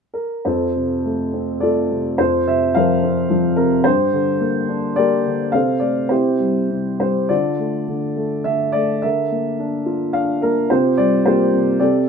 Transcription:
0.14 0.45 A#4 soft
0.45 2.15 F2 soft
0.45 1.59 F4 soft
0.45 1.59 A4 soft
0.45 1.65 C5 soft
0.76 1.87 C3 soft
1.05 1.59 A3 soft
1.33 2.17 C4 soft
1.60 2.17 A3 soft
1.60 2.16 F4 soft
1.60 2.16 A4 soft
1.60 2.20 D5 medium
1.90 2.18 C3 soft
2.18 3.80 F2 soft
2.18 2.99 F4 soft
2.18 2.45 C5 medium
2.47 3.54 C3 soft
2.47 2.74 E5 medium
2.75 3.28 F3 soft
2.75 3.54 A#4 soft
2.75 3.54 C5 soft
2.75 3.59 F5 medium
3.03 3.82 C4 soft
3.30 3.83 F3 soft
3.56 3.84 C3 soft
3.56 3.85 A#4 medium
3.84 5.49 G2 soft
3.84 4.93 G4 soft
3.84 5.00 C5 medium
4.12 5.22 D3 soft
4.40 4.96 A#3 soft
4.69 5.51 D4 soft
4.96 5.52 A#3 soft
4.96 5.50 G4 soft
4.96 5.50 A#4 soft
4.96 5.55 D5 medium
5.25 5.53 D3 soft
5.52 6.08 C3 soft
5.52 6.07 A4 soft
5.52 6.07 C5 soft
5.52 5.82 F5 medium
5.80 6.10 A3 soft
5.80 6.11 D5 medium
6.09 6.69 C3 soft
6.09 6.97 E4 soft
6.09 6.97 G4 soft
6.09 6.98 C5 medium
6.39 6.99 G3 soft
6.71 7.29 C3 soft
7.00 7.29 G3 soft
7.00 7.31 C5 medium
7.29 7.86 D3 soft
7.29 8.42 F4 soft
7.29 8.41 A4 soft
7.29 8.48 D5 medium
7.59 8.15 A3 soft
7.88 8.44 D3 soft
8.16 8.74 A3 soft
8.44 9.01 D3 soft
8.44 8.75 E5 medium
8.72 9.03 A3 soft
8.72 9.03 D5 medium
9.02 10.67 D3 soft
9.02 10.11 A#4 soft
9.02 10.17 E5 medium
9.32 10.40 A#3 soft
9.59 10.13 D4 soft
9.86 10.68 F4 soft
10.13 10.69 D4 soft
10.13 10.43 F5 medium
10.42 10.70 A#3 soft
10.42 10.71 A#4 medium
10.70 11.51 C3 medium
10.70 11.26 F4 soft
10.70 11.25 G4 soft
10.70 10.99 C5 medium
10.97 11.77 G3 soft
10.97 11.23 D5 medium
11.26 11.78 A#3 soft
11.26 11.77 F4 soft
11.26 11.77 G4 soft
11.26 11.82 C5 medium
11.53 11.79 C3 soft
11.80 12.09 C3 medium
11.80 12.09 G4 soft
11.80 12.09 A4 soft
11.80 12.06 D5 medium

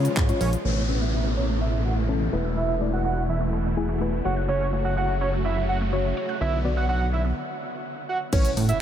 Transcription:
0.00 0.63 C#3 medium
0.00 0.64 F3 medium
0.00 0.22 G#3 loud
0.00 0.64 G#3 medium
0.00 0.22 C#4 medium
0.00 0.22 F4 medium
0.00 0.64 F4 medium
0.00 0.22 C#5 loud
0.05 closed hi-hat medium
0.05 shaker medium
0.17 0.32 G#2 loud
0.17 kick loud
0.17 clap loud
0.17 shaker medium
0.29 0.58 G#3 medium
0.29 0.58 C#4 medium
0.29 0.58 F4 medium
0.29 0.58 C#5 medium
0.29 closed hi-hat soft
0.29 shaker soft
0.40 0.56 A#1 loud
0.40 0.49 C#5 medium
0.40 open hi-hat medium
0.40 shaker medium
0.53 closed hi-hat medium
0.53 shaker medium
0.64 2.29 A1 medium
0.64 0.72 B2 medium
0.64 2.31 C#3 medium
0.64 0.84 A3 medium
0.64 6.37 A3 medium
0.64 2.31 B3 medium
0.64 0.84 C#4 medium
0.64 4.21 E4 medium
0.64 0.84 B4 medium
0.64 0.82 C#5 loud
0.64 downlifter medium
0.77 0.84 B2 medium
0.88 0.96 B2 medium
0.88 1.66 A3 medium
0.88 1.66 C#4 medium
0.88 1.66 B4 medium
1.01 1.08 A3 medium
1.01 1.10 E5 medium
1.13 1.20 B2 medium
1.13 1.30 E5 medium
1.25 1.32 B2 medium
1.37 1.44 E3 medium
1.37 1.46 C#5 medium
1.49 1.56 A3 medium
1.60 1.68 B2 medium
1.60 1.78 E5 medium
1.73 1.80 B2 medium
1.85 1.94 F#5 medium
1.97 2.04 A3 medium
2.08 2.16 B2 medium
2.08 2.31 A3 medium
2.08 2.33 C#4 medium
2.08 2.33 A4 loud
2.21 2.28 B2 medium
2.32 4.21 E1 medium
2.32 4.23 B2 medium
2.32 4.23 E3 medium
2.32 2.71 A3 loud
2.32 2.71 E4 medium
2.32 2.40 B4 medium
2.32 2.71 B4 loud
2.45 2.52 E6 medium
2.57 2.64 B2 medium
2.57 2.74 E5 medium
2.69 2.76 B2 medium
2.81 2.88 B2 medium
2.81 3.58 A3 medium
2.81 3.58 E4 medium
2.81 3.58 D5 medium
2.93 3.00 A3 medium
2.93 3.02 F#5 medium
3.05 3.12 B2 medium
3.05 3.23 F#5 medium
3.16 3.24 B2 medium
3.29 3.36 E3 medium
3.29 3.38 E5 medium
3.41 3.48 A3 medium
3.53 3.60 B2 medium
3.65 3.72 B2 medium
3.77 3.96 A3 loud
3.77 3.96 E4 medium
3.77 3.96 G#4 loud
3.89 3.96 A3 medium
4.01 4.08 B2 medium
4.01 4.24 A3 medium
4.01 4.25 E4 medium
4.01 4.25 B4 loud
4.13 4.20 B2 medium
4.25 6.13 F#1 medium
4.25 6.39 C#3 medium
4.25 7.34 F#3 medium
4.25 4.63 A3 medium
4.25 4.64 F#4 medium
4.25 7.34 F#4 medium
4.25 4.32 C#5 medium
4.25 4.64 C#5 medium
4.25 4.34 F#5 medium
4.37 4.44 F#6 medium
4.49 4.56 C#3 medium
4.49 4.66 C#5 loud
4.61 4.68 C#3 medium
4.72 4.80 C#3 medium
4.72 5.50 A3 medium
4.72 5.50 F#4 medium
4.72 5.50 C#5 medium
4.85 4.92 A3 medium
4.85 4.93 F#5 medium
4.97 5.04 C#3 medium
4.97 5.14 F#5 medium
5.09 5.16 C#3 medium
5.21 5.28 F#3 medium
5.21 5.30 C#5 medium
5.33 5.40 A3 medium
5.45 5.52 C#3 medium
5.45 5.63 E5 medium
5.57 5.64 C#3 medium
5.69 5.78 F#5 medium
5.81 5.88 A3 medium
5.92 6.00 C#3 medium
5.92 6.41 A3 medium
5.92 6.41 F#4 medium
5.92 6.41 C#5 loud
6.05 6.12 C#3 medium
6.17 6.24 C#5 medium
6.29 6.36 F#6 medium
6.41 7.33 B1 medium
6.41 6.48 D3 medium
6.41 7.36 D3 medium
6.41 7.36 B3 medium
6.41 6.58 E5 medium
6.53 6.60 D3 medium
6.64 6.72 D3 medium
6.64 7.37 B3 medium
6.64 7.37 F#4 medium
6.64 7.37 D5 medium
6.77 6.84 B3 medium
6.77 6.86 F#5 medium
6.89 6.96 D3 medium
6.89 7.06 F#5 medium
7.01 7.08 D3 medium
7.13 7.20 F#3 medium
7.13 7.22 E5 medium
7.25 7.32 B3 medium
8.09 8.18 F#5 medium
8.33 8.48 A1 loud
8.33 8.82 A3 medium
8.33 8.82 C#4 medium
8.33 8.82 E4 medium
8.33 8.82 B4 medium
8.33 8.50 C#5 loud
8.33 kick loud
8.33 crash loud
8.33 impact medium
8.33 shaker medium
8.45 closed hi-hat medium
8.45 shaker medium
8.57 8.72 A2 loud
8.57 open hi-hat medium
8.57 shaker medium
8.69 8.78 E5 medium
8.69 closed hi-hat medium
8.69 shaker medium

